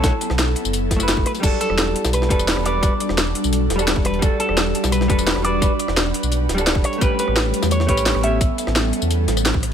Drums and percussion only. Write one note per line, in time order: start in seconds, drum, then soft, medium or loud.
0.04 kick loud
0.04 snare loud
0.04 closed hi-hat medium
0.04 tambourine medium
0.21 closed hi-hat medium
0.21 closed hi-hat loud
0.21 tambourine soft
0.30 cross-stick soft
0.30 snare soft
0.38 snare loud
0.38 closed hi-hat medium
0.38 tambourine medium
0.56 closed hi-hat medium
0.65 tambourine medium
0.73 closed hi-hat medium
0.73 tambourine medium
0.91 kick medium
0.91 snare soft
0.91 closed hi-hat medium
0.91 closed hi-hat loud
0.91 tambourine soft
1.00 cross-stick soft
1.00 tambourine medium
1.08 snare loud
1.08 closed hi-hat medium
1.08 tambourine medium
1.17 kick loud
1.26 cross-stick soft
1.26 closed hi-hat medium
1.35 closed hi-hat soft
1.35 tambourine soft
1.43 kick loud
1.43 closed hi-hat medium
1.43 tambourine soft
1.43 crash medium
1.61 closed hi-hat medium
1.61 tambourine soft
1.70 cross-stick medium
1.78 snare loud
1.78 closed hi-hat medium
1.78 tambourine medium
1.96 closed hi-hat loud
1.96 closed hi-hat medium
2.05 snare medium
2.05 tambourine medium
2.13 closed hi-hat medium
2.13 tambourine soft
2.22 snare soft
2.30 kick loud
2.30 closed hi-hat loud
2.30 closed hi-hat medium
2.30 tambourine soft
2.39 cross-stick soft
2.39 closed hi-hat soft
2.39 tambourine medium
2.48 snare loud
2.48 closed hi-hat medium
2.48 open hi-hat medium
2.48 tambourine medium
2.57 cross-stick medium
2.65 closed hi-hat medium
2.83 kick loud
2.83 closed hi-hat medium
2.83 tambourine soft
3.00 closed hi-hat medium
3.00 tambourine soft
3.09 cross-stick medium
3.09 snare soft
3.18 snare loud
3.18 closed hi-hat medium
3.18 tambourine soft
3.35 closed hi-hat loud
3.35 closed hi-hat medium
3.44 tambourine medium
3.53 closed hi-hat medium
3.53 tambourine soft
3.70 snare soft
3.70 closed hi-hat medium
3.70 tambourine soft
3.79 cross-stick soft
3.79 tambourine medium
3.87 snare loud
3.87 closed hi-hat medium
3.87 tambourine soft
3.96 kick loud
4.05 cross-stick soft
4.05 closed hi-hat medium
4.14 closed hi-hat soft
4.22 kick loud
4.22 closed hi-hat medium
4.22 tambourine soft
4.40 closed hi-hat medium
4.40 tambourine soft
4.49 cross-stick medium
4.57 snare loud
4.57 closed hi-hat medium
4.57 tambourine soft
4.75 closed hi-hat medium
4.84 snare medium
4.84 tambourine medium
4.92 closed hi-hat medium
4.92 tambourine soft
5.01 snare medium
5.10 kick loud
5.10 closed hi-hat medium
5.10 tambourine soft
5.18 cross-stick soft
5.18 closed hi-hat soft
5.18 tambourine medium
5.27 snare loud
5.27 closed hi-hat medium
5.27 open hi-hat medium
5.27 tambourine soft
5.36 cross-stick medium
5.45 closed hi-hat medium
5.62 kick loud
5.62 closed hi-hat medium
5.62 tambourine soft
5.79 closed hi-hat medium
5.79 tambourine soft
5.88 cross-stick soft
5.88 snare soft
5.97 snare loud
5.97 closed hi-hat medium
5.97 tambourine soft
6.14 closed hi-hat medium
6.23 tambourine medium
6.32 closed hi-hat medium
6.32 tambourine soft
6.49 snare soft
6.49 closed hi-hat medium
6.49 tambourine soft
6.58 cross-stick soft
6.58 tambourine medium
6.67 snare loud
6.67 closed hi-hat medium
6.67 tambourine soft
6.75 kick loud
6.84 cross-stick soft
6.84 closed hi-hat medium
6.84 tambourine soft
6.93 closed hi-hat soft
7.01 kick loud
7.01 closed hi-hat medium
7.01 tambourine medium
7.19 closed hi-hat medium
7.19 tambourine soft
7.28 cross-stick soft
7.36 snare loud
7.36 closed hi-hat medium
7.36 tambourine soft
7.54 closed hi-hat medium
7.62 snare medium
7.62 tambourine medium
7.71 closed hi-hat medium
7.71 tambourine medium
7.80 snare soft
7.88 kick loud
7.88 closed hi-hat medium
7.88 tambourine soft
7.97 cross-stick soft
7.97 closed hi-hat soft
7.97 tambourine medium
8.06 snare loud
8.06 closed hi-hat medium
8.06 open hi-hat medium
8.06 tambourine medium
8.15 cross-stick medium
8.23 closed hi-hat medium
8.41 kick loud
8.41 closed hi-hat medium
8.41 tambourine medium
8.58 closed hi-hat medium
8.58 tambourine soft
8.67 cross-stick soft
8.67 snare soft
8.76 snare loud
8.76 closed hi-hat medium
8.76 tambourine medium
8.93 closed hi-hat medium
9.02 tambourine medium
9.11 closed hi-hat medium
9.11 tambourine medium
9.28 snare soft
9.28 closed hi-hat medium
9.28 tambourine soft
9.37 cross-stick soft
9.37 tambourine medium
9.45 snare loud
9.45 closed hi-hat medium
9.45 tambourine medium
9.54 kick loud
9.63 cross-stick soft
9.63 closed hi-hat medium